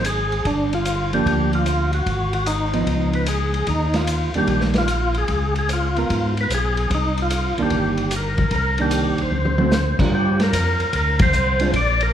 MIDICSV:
0, 0, Header, 1, 5, 480
1, 0, Start_track
1, 0, Tempo, 403226
1, 533, Time_signature, 4, 2, 24, 8
1, 14440, End_track
2, 0, Start_track
2, 0, Title_t, "Tonewheel organ"
2, 0, Program_c, 0, 16
2, 73, Note_on_c, 0, 68, 74
2, 556, Note_on_c, 0, 62, 86
2, 557, Note_off_c, 0, 68, 0
2, 876, Note_off_c, 0, 62, 0
2, 885, Note_on_c, 0, 65, 76
2, 1318, Note_off_c, 0, 65, 0
2, 1359, Note_on_c, 0, 67, 72
2, 1508, Note_off_c, 0, 67, 0
2, 1522, Note_on_c, 0, 67, 77
2, 1808, Note_off_c, 0, 67, 0
2, 1847, Note_on_c, 0, 65, 96
2, 2279, Note_off_c, 0, 65, 0
2, 2315, Note_on_c, 0, 66, 74
2, 2779, Note_off_c, 0, 66, 0
2, 2793, Note_on_c, 0, 66, 70
2, 2939, Note_on_c, 0, 63, 69
2, 2948, Note_off_c, 0, 66, 0
2, 3692, Note_off_c, 0, 63, 0
2, 3751, Note_on_c, 0, 71, 77
2, 3907, Note_on_c, 0, 68, 70
2, 3908, Note_off_c, 0, 71, 0
2, 4392, Note_on_c, 0, 63, 80
2, 4396, Note_off_c, 0, 68, 0
2, 4710, Note_on_c, 0, 65, 75
2, 4716, Note_off_c, 0, 63, 0
2, 5151, Note_off_c, 0, 65, 0
2, 5210, Note_on_c, 0, 67, 72
2, 5338, Note_off_c, 0, 67, 0
2, 5352, Note_on_c, 0, 67, 76
2, 5494, Note_off_c, 0, 67, 0
2, 5691, Note_on_c, 0, 65, 92
2, 6162, Note_on_c, 0, 68, 79
2, 6169, Note_off_c, 0, 65, 0
2, 6598, Note_off_c, 0, 68, 0
2, 6650, Note_on_c, 0, 68, 72
2, 6783, Note_off_c, 0, 68, 0
2, 6821, Note_on_c, 0, 65, 70
2, 7554, Note_off_c, 0, 65, 0
2, 7627, Note_on_c, 0, 71, 83
2, 7766, Note_off_c, 0, 71, 0
2, 7790, Note_on_c, 0, 68, 73
2, 8213, Note_on_c, 0, 60, 56
2, 8217, Note_off_c, 0, 68, 0
2, 8237, Note_off_c, 0, 60, 0
2, 8267, Note_on_c, 0, 63, 77
2, 8573, Note_off_c, 0, 63, 0
2, 8595, Note_on_c, 0, 65, 67
2, 9061, Note_off_c, 0, 65, 0
2, 9075, Note_on_c, 0, 67, 76
2, 9705, Note_off_c, 0, 67, 0
2, 9715, Note_on_c, 0, 70, 65
2, 10173, Note_off_c, 0, 70, 0
2, 10188, Note_on_c, 0, 70, 85
2, 10464, Note_off_c, 0, 70, 0
2, 10495, Note_on_c, 0, 67, 65
2, 10972, Note_off_c, 0, 67, 0
2, 10973, Note_on_c, 0, 72, 70
2, 11869, Note_off_c, 0, 72, 0
2, 12080, Note_on_c, 0, 67, 88
2, 12400, Note_off_c, 0, 67, 0
2, 12419, Note_on_c, 0, 70, 98
2, 13035, Note_off_c, 0, 70, 0
2, 13049, Note_on_c, 0, 70, 86
2, 13333, Note_off_c, 0, 70, 0
2, 13358, Note_on_c, 0, 72, 113
2, 13942, Note_off_c, 0, 72, 0
2, 13999, Note_on_c, 0, 74, 104
2, 14316, Note_on_c, 0, 70, 91
2, 14319, Note_off_c, 0, 74, 0
2, 14440, Note_off_c, 0, 70, 0
2, 14440, End_track
3, 0, Start_track
3, 0, Title_t, "Hollow-body jazz guitar"
3, 0, Program_c, 1, 26
3, 1347, Note_on_c, 1, 53, 48
3, 1354, Note_on_c, 1, 58, 60
3, 1361, Note_on_c, 1, 62, 63
3, 1949, Note_off_c, 1, 53, 0
3, 1952, Note_off_c, 1, 58, 0
3, 1956, Note_off_c, 1, 62, 0
3, 3254, Note_on_c, 1, 53, 54
3, 3258, Note_on_c, 1, 59, 63
3, 3264, Note_on_c, 1, 63, 56
3, 3863, Note_off_c, 1, 53, 0
3, 3865, Note_off_c, 1, 59, 0
3, 3868, Note_off_c, 1, 63, 0
3, 5177, Note_on_c, 1, 51, 51
3, 5183, Note_on_c, 1, 55, 50
3, 5185, Note_on_c, 1, 62, 52
3, 5187, Note_on_c, 1, 58, 56
3, 5785, Note_off_c, 1, 51, 0
3, 5788, Note_off_c, 1, 55, 0
3, 5789, Note_off_c, 1, 62, 0
3, 5790, Note_off_c, 1, 58, 0
3, 7109, Note_on_c, 1, 59, 51
3, 7117, Note_on_c, 1, 65, 51
3, 7125, Note_on_c, 1, 70, 60
3, 7712, Note_off_c, 1, 59, 0
3, 7715, Note_off_c, 1, 65, 0
3, 7720, Note_off_c, 1, 70, 0
3, 9025, Note_on_c, 1, 51, 50
3, 9036, Note_on_c, 1, 58, 59
3, 9043, Note_on_c, 1, 62, 60
3, 9630, Note_off_c, 1, 51, 0
3, 9635, Note_off_c, 1, 58, 0
3, 9638, Note_off_c, 1, 62, 0
3, 10468, Note_on_c, 1, 51, 56
3, 10475, Note_on_c, 1, 58, 59
3, 10476, Note_on_c, 1, 62, 65
3, 11071, Note_off_c, 1, 51, 0
3, 11075, Note_off_c, 1, 58, 0
3, 11075, Note_off_c, 1, 62, 0
3, 11417, Note_on_c, 1, 50, 57
3, 11421, Note_on_c, 1, 57, 50
3, 11424, Note_on_c, 1, 60, 52
3, 11430, Note_on_c, 1, 66, 56
3, 11561, Note_off_c, 1, 50, 0
3, 11563, Note_off_c, 1, 57, 0
3, 11565, Note_off_c, 1, 60, 0
3, 11568, Note_off_c, 1, 66, 0
3, 11902, Note_on_c, 1, 55, 49
3, 11908, Note_on_c, 1, 62, 55
3, 11919, Note_on_c, 1, 65, 54
3, 11919, Note_on_c, 1, 70, 53
3, 12508, Note_off_c, 1, 55, 0
3, 12511, Note_off_c, 1, 62, 0
3, 12516, Note_off_c, 1, 65, 0
3, 12516, Note_off_c, 1, 70, 0
3, 13814, Note_on_c, 1, 56, 59
3, 13820, Note_on_c, 1, 62, 68
3, 13821, Note_on_c, 1, 65, 72
3, 13959, Note_off_c, 1, 56, 0
3, 13962, Note_off_c, 1, 62, 0
3, 13963, Note_off_c, 1, 65, 0
3, 14440, End_track
4, 0, Start_track
4, 0, Title_t, "Tonewheel organ"
4, 0, Program_c, 2, 16
4, 0, Note_on_c, 2, 32, 69
4, 490, Note_off_c, 2, 32, 0
4, 537, Note_on_c, 2, 31, 70
4, 1448, Note_off_c, 2, 31, 0
4, 1496, Note_on_c, 2, 38, 69
4, 2408, Note_off_c, 2, 38, 0
4, 2453, Note_on_c, 2, 32, 73
4, 3367, Note_off_c, 2, 32, 0
4, 3412, Note_on_c, 2, 37, 72
4, 4327, Note_off_c, 2, 37, 0
4, 4364, Note_on_c, 2, 39, 73
4, 5125, Note_off_c, 2, 39, 0
4, 5174, Note_on_c, 2, 39, 30
4, 5255, Note_off_c, 2, 39, 0
4, 5330, Note_on_c, 2, 34, 67
4, 6246, Note_off_c, 2, 34, 0
4, 6290, Note_on_c, 2, 37, 73
4, 7207, Note_off_c, 2, 37, 0
4, 7255, Note_on_c, 2, 44, 76
4, 7703, Note_off_c, 2, 44, 0
4, 7730, Note_on_c, 2, 35, 67
4, 8180, Note_off_c, 2, 35, 0
4, 8213, Note_on_c, 2, 36, 76
4, 8970, Note_off_c, 2, 36, 0
4, 9018, Note_on_c, 2, 36, 30
4, 9098, Note_off_c, 2, 36, 0
4, 9178, Note_on_c, 2, 31, 71
4, 10091, Note_off_c, 2, 31, 0
4, 10130, Note_on_c, 2, 36, 75
4, 10888, Note_off_c, 2, 36, 0
4, 10928, Note_on_c, 2, 36, 31
4, 11010, Note_off_c, 2, 36, 0
4, 11080, Note_on_c, 2, 38, 70
4, 11843, Note_off_c, 2, 38, 0
4, 11893, Note_on_c, 2, 38, 36
4, 11974, Note_off_c, 2, 38, 0
4, 12045, Note_on_c, 2, 43, 73
4, 12517, Note_off_c, 2, 43, 0
4, 12530, Note_on_c, 2, 41, 82
4, 12830, Note_off_c, 2, 41, 0
4, 12844, Note_on_c, 2, 41, 32
4, 12927, Note_off_c, 2, 41, 0
4, 13009, Note_on_c, 2, 38, 69
4, 13479, Note_off_c, 2, 38, 0
4, 13480, Note_on_c, 2, 36, 80
4, 13954, Note_off_c, 2, 36, 0
4, 13965, Note_on_c, 2, 34, 80
4, 14436, Note_off_c, 2, 34, 0
4, 14440, End_track
5, 0, Start_track
5, 0, Title_t, "Drums"
5, 54, Note_on_c, 9, 44, 49
5, 54, Note_on_c, 9, 51, 57
5, 173, Note_off_c, 9, 44, 0
5, 173, Note_off_c, 9, 51, 0
5, 381, Note_on_c, 9, 51, 33
5, 500, Note_off_c, 9, 51, 0
5, 537, Note_on_c, 9, 51, 44
5, 540, Note_on_c, 9, 36, 28
5, 656, Note_off_c, 9, 51, 0
5, 659, Note_off_c, 9, 36, 0
5, 865, Note_on_c, 9, 51, 37
5, 984, Note_off_c, 9, 51, 0
5, 1016, Note_on_c, 9, 44, 49
5, 1016, Note_on_c, 9, 51, 53
5, 1136, Note_off_c, 9, 44, 0
5, 1136, Note_off_c, 9, 51, 0
5, 1345, Note_on_c, 9, 51, 35
5, 1464, Note_off_c, 9, 51, 0
5, 1501, Note_on_c, 9, 36, 26
5, 1507, Note_on_c, 9, 51, 41
5, 1620, Note_off_c, 9, 36, 0
5, 1626, Note_off_c, 9, 51, 0
5, 1821, Note_on_c, 9, 51, 33
5, 1940, Note_off_c, 9, 51, 0
5, 1975, Note_on_c, 9, 44, 41
5, 1975, Note_on_c, 9, 51, 45
5, 2094, Note_off_c, 9, 44, 0
5, 2094, Note_off_c, 9, 51, 0
5, 2294, Note_on_c, 9, 51, 35
5, 2413, Note_off_c, 9, 51, 0
5, 2457, Note_on_c, 9, 36, 27
5, 2458, Note_on_c, 9, 51, 46
5, 2576, Note_off_c, 9, 36, 0
5, 2577, Note_off_c, 9, 51, 0
5, 2773, Note_on_c, 9, 51, 37
5, 2892, Note_off_c, 9, 51, 0
5, 2932, Note_on_c, 9, 44, 44
5, 2932, Note_on_c, 9, 51, 52
5, 3051, Note_off_c, 9, 44, 0
5, 3051, Note_off_c, 9, 51, 0
5, 3255, Note_on_c, 9, 51, 33
5, 3374, Note_off_c, 9, 51, 0
5, 3414, Note_on_c, 9, 36, 25
5, 3414, Note_on_c, 9, 51, 43
5, 3533, Note_off_c, 9, 36, 0
5, 3533, Note_off_c, 9, 51, 0
5, 3729, Note_on_c, 9, 51, 35
5, 3848, Note_off_c, 9, 51, 0
5, 3884, Note_on_c, 9, 44, 45
5, 3884, Note_on_c, 9, 51, 57
5, 4003, Note_off_c, 9, 44, 0
5, 4003, Note_off_c, 9, 51, 0
5, 4211, Note_on_c, 9, 51, 35
5, 4330, Note_off_c, 9, 51, 0
5, 4364, Note_on_c, 9, 51, 48
5, 4371, Note_on_c, 9, 36, 28
5, 4484, Note_off_c, 9, 51, 0
5, 4490, Note_off_c, 9, 36, 0
5, 4685, Note_on_c, 9, 51, 39
5, 4690, Note_on_c, 9, 38, 30
5, 4804, Note_off_c, 9, 51, 0
5, 4809, Note_off_c, 9, 38, 0
5, 4848, Note_on_c, 9, 44, 45
5, 4848, Note_on_c, 9, 51, 57
5, 4967, Note_off_c, 9, 44, 0
5, 4967, Note_off_c, 9, 51, 0
5, 5166, Note_on_c, 9, 51, 33
5, 5285, Note_off_c, 9, 51, 0
5, 5326, Note_on_c, 9, 51, 44
5, 5331, Note_on_c, 9, 36, 26
5, 5445, Note_off_c, 9, 51, 0
5, 5450, Note_off_c, 9, 36, 0
5, 5486, Note_on_c, 9, 38, 26
5, 5605, Note_off_c, 9, 38, 0
5, 5637, Note_on_c, 9, 51, 37
5, 5647, Note_on_c, 9, 38, 34
5, 5756, Note_off_c, 9, 51, 0
5, 5766, Note_off_c, 9, 38, 0
5, 5804, Note_on_c, 9, 44, 41
5, 5804, Note_on_c, 9, 51, 54
5, 5923, Note_off_c, 9, 44, 0
5, 5923, Note_off_c, 9, 51, 0
5, 6123, Note_on_c, 9, 51, 34
5, 6242, Note_off_c, 9, 51, 0
5, 6283, Note_on_c, 9, 51, 46
5, 6294, Note_on_c, 9, 36, 26
5, 6402, Note_off_c, 9, 51, 0
5, 6414, Note_off_c, 9, 36, 0
5, 6612, Note_on_c, 9, 51, 37
5, 6731, Note_off_c, 9, 51, 0
5, 6773, Note_on_c, 9, 44, 43
5, 6773, Note_on_c, 9, 51, 55
5, 6892, Note_off_c, 9, 44, 0
5, 6892, Note_off_c, 9, 51, 0
5, 7099, Note_on_c, 9, 51, 33
5, 7218, Note_off_c, 9, 51, 0
5, 7262, Note_on_c, 9, 51, 48
5, 7264, Note_on_c, 9, 36, 29
5, 7381, Note_off_c, 9, 51, 0
5, 7383, Note_off_c, 9, 36, 0
5, 7585, Note_on_c, 9, 51, 36
5, 7704, Note_off_c, 9, 51, 0
5, 7742, Note_on_c, 9, 44, 48
5, 7742, Note_on_c, 9, 51, 53
5, 7861, Note_off_c, 9, 44, 0
5, 7861, Note_off_c, 9, 51, 0
5, 8060, Note_on_c, 9, 51, 33
5, 8179, Note_off_c, 9, 51, 0
5, 8220, Note_on_c, 9, 51, 51
5, 8222, Note_on_c, 9, 36, 29
5, 8339, Note_off_c, 9, 51, 0
5, 8341, Note_off_c, 9, 36, 0
5, 8541, Note_on_c, 9, 51, 38
5, 8660, Note_off_c, 9, 51, 0
5, 8695, Note_on_c, 9, 44, 51
5, 8695, Note_on_c, 9, 51, 55
5, 8814, Note_off_c, 9, 44, 0
5, 8814, Note_off_c, 9, 51, 0
5, 9020, Note_on_c, 9, 51, 34
5, 9139, Note_off_c, 9, 51, 0
5, 9168, Note_on_c, 9, 51, 42
5, 9178, Note_on_c, 9, 36, 28
5, 9287, Note_off_c, 9, 51, 0
5, 9297, Note_off_c, 9, 36, 0
5, 9493, Note_on_c, 9, 51, 34
5, 9612, Note_off_c, 9, 51, 0
5, 9651, Note_on_c, 9, 44, 52
5, 9651, Note_on_c, 9, 51, 53
5, 9770, Note_off_c, 9, 44, 0
5, 9770, Note_off_c, 9, 51, 0
5, 9970, Note_on_c, 9, 51, 35
5, 9978, Note_on_c, 9, 36, 47
5, 10089, Note_off_c, 9, 51, 0
5, 10097, Note_off_c, 9, 36, 0
5, 10127, Note_on_c, 9, 51, 45
5, 10133, Note_on_c, 9, 36, 28
5, 10246, Note_off_c, 9, 51, 0
5, 10252, Note_off_c, 9, 36, 0
5, 10448, Note_on_c, 9, 51, 35
5, 10568, Note_off_c, 9, 51, 0
5, 10605, Note_on_c, 9, 44, 48
5, 10605, Note_on_c, 9, 51, 56
5, 10724, Note_off_c, 9, 44, 0
5, 10724, Note_off_c, 9, 51, 0
5, 10929, Note_on_c, 9, 51, 32
5, 11048, Note_off_c, 9, 51, 0
5, 11095, Note_on_c, 9, 48, 33
5, 11214, Note_off_c, 9, 48, 0
5, 11253, Note_on_c, 9, 48, 45
5, 11372, Note_off_c, 9, 48, 0
5, 11407, Note_on_c, 9, 48, 62
5, 11526, Note_off_c, 9, 48, 0
5, 11563, Note_on_c, 9, 44, 46
5, 11568, Note_on_c, 9, 38, 46
5, 11682, Note_off_c, 9, 44, 0
5, 11687, Note_off_c, 9, 38, 0
5, 11892, Note_on_c, 9, 36, 58
5, 11894, Note_on_c, 9, 49, 56
5, 12011, Note_off_c, 9, 36, 0
5, 12013, Note_off_c, 9, 49, 0
5, 12050, Note_on_c, 9, 36, 20
5, 12169, Note_off_c, 9, 36, 0
5, 12375, Note_on_c, 9, 51, 41
5, 12380, Note_on_c, 9, 38, 30
5, 12494, Note_off_c, 9, 51, 0
5, 12499, Note_off_c, 9, 38, 0
5, 12534, Note_on_c, 9, 36, 24
5, 12538, Note_on_c, 9, 44, 57
5, 12538, Note_on_c, 9, 51, 68
5, 12653, Note_off_c, 9, 36, 0
5, 12657, Note_off_c, 9, 44, 0
5, 12657, Note_off_c, 9, 51, 0
5, 12855, Note_on_c, 9, 51, 39
5, 12974, Note_off_c, 9, 51, 0
5, 13010, Note_on_c, 9, 51, 55
5, 13011, Note_on_c, 9, 36, 17
5, 13129, Note_off_c, 9, 51, 0
5, 13130, Note_off_c, 9, 36, 0
5, 13324, Note_on_c, 9, 51, 68
5, 13330, Note_on_c, 9, 36, 71
5, 13443, Note_off_c, 9, 51, 0
5, 13449, Note_off_c, 9, 36, 0
5, 13487, Note_on_c, 9, 44, 49
5, 13606, Note_off_c, 9, 44, 0
5, 13802, Note_on_c, 9, 51, 40
5, 13921, Note_off_c, 9, 51, 0
5, 13969, Note_on_c, 9, 51, 52
5, 13971, Note_on_c, 9, 36, 24
5, 14088, Note_off_c, 9, 51, 0
5, 14090, Note_off_c, 9, 36, 0
5, 14291, Note_on_c, 9, 51, 44
5, 14410, Note_off_c, 9, 51, 0
5, 14440, End_track
0, 0, End_of_file